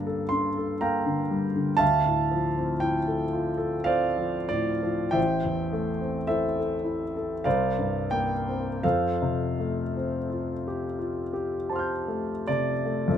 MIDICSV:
0, 0, Header, 1, 2, 480
1, 0, Start_track
1, 0, Key_signature, -1, "major"
1, 0, Tempo, 995025
1, 876, Time_signature, 3, 2, 24, 8
1, 876, Tempo, 1039861
1, 1836, Tempo, 1273885
1, 2316, Tempo, 1142857
1, 3276, Tempo, 1376147
1, 3756, Tempo, 1466993
1, 4236, Tempo, 1388889
1, 4716, Tempo, 1507538
1, 5190, End_track
2, 0, Start_track
2, 0, Title_t, "Grand piano"
2, 0, Program_c, 0, 0
2, 0, Control_c, 0, 64, 127
2, 0, Note_on_c, 0, 43, 44
2, 0, Note_on_c, 0, 50, 37
2, 0, Note_on_c, 0, 55, 38
2, 0, Note_on_c, 0, 58, 32
2, 0, Note_on_c, 0, 62, 38
2, 0, Note_on_c, 0, 70, 54
2, 0, Note_on_c, 0, 74, 55
2, 0, Note_on_c, 0, 77, 70
2, 32, Note_on_c, 0, 69, 38
2, 110, Note_off_c, 0, 62, 0
2, 132, Note_off_c, 0, 74, 0
2, 135, Note_off_c, 0, 70, 0
2, 139, Note_on_c, 0, 84, 65
2, 150, Note_off_c, 0, 77, 0
2, 152, Note_on_c, 0, 62, 38
2, 227, Note_off_c, 0, 69, 0
2, 277, Note_on_c, 0, 69, 45
2, 347, Note_off_c, 0, 62, 0
2, 389, Note_off_c, 0, 84, 0
2, 390, Note_on_c, 0, 82, 65
2, 393, Note_on_c, 0, 77, 50
2, 394, Note_on_c, 0, 79, 47
2, 397, Note_off_c, 0, 58, 0
2, 397, Note_on_c, 0, 58, 37
2, 469, Note_off_c, 0, 69, 0
2, 512, Note_off_c, 0, 50, 0
2, 512, Note_on_c, 0, 50, 43
2, 588, Note_off_c, 0, 58, 0
2, 630, Note_off_c, 0, 55, 0
2, 630, Note_on_c, 0, 55, 37
2, 704, Note_off_c, 0, 50, 0
2, 752, Note_on_c, 0, 50, 39
2, 824, Note_off_c, 0, 55, 0
2, 850, Note_off_c, 0, 77, 0
2, 852, Note_on_c, 0, 81, 86
2, 853, Note_off_c, 0, 43, 0
2, 855, Note_off_c, 0, 79, 0
2, 857, Note_on_c, 0, 76, 61
2, 858, Note_on_c, 0, 77, 61
2, 861, Note_on_c, 0, 38, 51
2, 872, Note_off_c, 0, 82, 0
2, 874, Note_off_c, 0, 50, 0
2, 883, Control_c, 0, 64, 0
2, 949, Control_c, 0, 64, 127
2, 986, Note_on_c, 0, 45, 37
2, 1106, Note_on_c, 0, 53, 40
2, 1179, Note_off_c, 0, 45, 0
2, 1222, Note_on_c, 0, 60, 39
2, 1298, Note_off_c, 0, 53, 0
2, 1320, Note_off_c, 0, 76, 0
2, 1320, Note_off_c, 0, 77, 0
2, 1331, Note_on_c, 0, 79, 70
2, 1336, Note_off_c, 0, 81, 0
2, 1338, Note_on_c, 0, 64, 39
2, 1414, Note_off_c, 0, 60, 0
2, 1458, Note_on_c, 0, 69, 40
2, 1532, Note_off_c, 0, 64, 0
2, 1570, Note_on_c, 0, 65, 40
2, 1654, Note_off_c, 0, 69, 0
2, 1688, Note_on_c, 0, 69, 45
2, 1776, Note_off_c, 0, 65, 0
2, 1811, Note_on_c, 0, 77, 77
2, 1817, Note_on_c, 0, 72, 59
2, 1820, Note_on_c, 0, 60, 45
2, 1821, Note_on_c, 0, 74, 61
2, 1828, Note_off_c, 0, 79, 0
2, 1895, Note_off_c, 0, 69, 0
2, 1939, Note_on_c, 0, 53, 41
2, 2015, Note_off_c, 0, 60, 0
2, 2049, Note_off_c, 0, 72, 0
2, 2051, Note_off_c, 0, 74, 0
2, 2059, Note_on_c, 0, 74, 77
2, 2062, Note_off_c, 0, 77, 0
2, 2066, Note_on_c, 0, 45, 43
2, 2143, Note_off_c, 0, 53, 0
2, 2187, Note_on_c, 0, 53, 39
2, 2266, Note_off_c, 0, 45, 0
2, 2293, Note_on_c, 0, 79, 74
2, 2295, Note_off_c, 0, 38, 0
2, 2299, Note_on_c, 0, 76, 58
2, 2301, Note_on_c, 0, 33, 51
2, 2302, Note_on_c, 0, 72, 57
2, 2309, Note_off_c, 0, 74, 0
2, 2311, Note_off_c, 0, 53, 0
2, 2323, Control_c, 0, 64, 0
2, 2402, Control_c, 0, 64, 127
2, 2430, Note_on_c, 0, 40, 38
2, 2550, Note_on_c, 0, 57, 44
2, 2620, Note_off_c, 0, 40, 0
2, 2669, Note_on_c, 0, 60, 43
2, 2736, Note_off_c, 0, 57, 0
2, 2759, Note_off_c, 0, 76, 0
2, 2761, Note_off_c, 0, 72, 0
2, 2773, Note_off_c, 0, 79, 0
2, 2780, Note_on_c, 0, 76, 63
2, 2782, Note_on_c, 0, 72, 50
2, 2783, Note_on_c, 0, 69, 52
2, 2788, Note_on_c, 0, 64, 38
2, 2853, Note_off_c, 0, 60, 0
2, 2905, Note_off_c, 0, 69, 0
2, 2911, Note_on_c, 0, 69, 39
2, 2974, Note_off_c, 0, 64, 0
2, 3017, Note_on_c, 0, 64, 36
2, 3101, Note_off_c, 0, 69, 0
2, 3155, Note_on_c, 0, 69, 43
2, 3221, Note_off_c, 0, 64, 0
2, 3250, Note_off_c, 0, 33, 0
2, 3257, Note_off_c, 0, 72, 0
2, 3271, Note_on_c, 0, 77, 65
2, 3273, Note_off_c, 0, 76, 0
2, 3275, Note_on_c, 0, 74, 58
2, 3277, Note_on_c, 0, 72, 57
2, 3279, Note_off_c, 0, 69, 0
2, 3279, Note_on_c, 0, 36, 53
2, 3281, Control_c, 0, 64, 0
2, 3356, Control_c, 0, 64, 127
2, 3391, Note_on_c, 0, 43, 41
2, 3490, Note_off_c, 0, 74, 0
2, 3491, Note_off_c, 0, 72, 0
2, 3502, Note_off_c, 0, 77, 0
2, 3504, Note_on_c, 0, 79, 76
2, 3507, Note_on_c, 0, 58, 38
2, 3578, Note_off_c, 0, 43, 0
2, 3635, Note_on_c, 0, 60, 38
2, 3705, Note_off_c, 0, 58, 0
2, 3743, Note_off_c, 0, 36, 0
2, 3756, Note_off_c, 0, 79, 0
2, 3757, Note_on_c, 0, 77, 65
2, 3758, Note_on_c, 0, 72, 56
2, 3759, Note_on_c, 0, 69, 53
2, 3760, Note_off_c, 0, 60, 0
2, 3761, Control_c, 0, 64, 0
2, 3761, Note_on_c, 0, 41, 47
2, 3829, Control_c, 0, 64, 127
2, 3883, Note_on_c, 0, 48, 40
2, 4005, Note_on_c, 0, 57, 38
2, 4074, Note_off_c, 0, 48, 0
2, 4129, Note_on_c, 0, 60, 37
2, 4192, Note_off_c, 0, 57, 0
2, 4236, Note_on_c, 0, 65, 34
2, 4313, Note_off_c, 0, 60, 0
2, 4366, Note_on_c, 0, 67, 39
2, 4428, Note_off_c, 0, 65, 0
2, 4474, Note_on_c, 0, 65, 37
2, 4552, Note_off_c, 0, 67, 0
2, 4594, Note_on_c, 0, 67, 38
2, 4667, Note_off_c, 0, 65, 0
2, 4718, Note_on_c, 0, 81, 34
2, 4721, Note_on_c, 0, 60, 37
2, 4728, Note_on_c, 0, 84, 31
2, 4738, Note_on_c, 0, 89, 33
2, 4748, Note_on_c, 0, 91, 30
2, 4785, Note_off_c, 0, 67, 0
2, 4842, Note_on_c, 0, 57, 36
2, 4912, Note_off_c, 0, 60, 0
2, 4951, Note_off_c, 0, 72, 0
2, 4952, Note_off_c, 0, 69, 0
2, 4964, Note_off_c, 0, 77, 0
2, 4967, Note_on_c, 0, 74, 74
2, 4971, Note_on_c, 0, 48, 38
2, 5044, Note_off_c, 0, 57, 0
2, 5088, Note_on_c, 0, 57, 39
2, 5154, Note_off_c, 0, 41, 0
2, 5158, Note_off_c, 0, 48, 0
2, 5159, Note_on_c, 0, 41, 50
2, 5162, Note_off_c, 0, 57, 0
2, 5166, Note_on_c, 0, 57, 47
2, 5175, Note_on_c, 0, 60, 43
2, 5184, Note_off_c, 0, 81, 0
2, 5189, Note_off_c, 0, 84, 0
2, 5190, Note_off_c, 0, 41, 0
2, 5190, Note_off_c, 0, 57, 0
2, 5190, Note_off_c, 0, 60, 0
2, 5190, Note_off_c, 0, 74, 0
2, 5190, Note_off_c, 0, 89, 0
2, 5190, Note_off_c, 0, 91, 0
2, 5190, End_track
0, 0, End_of_file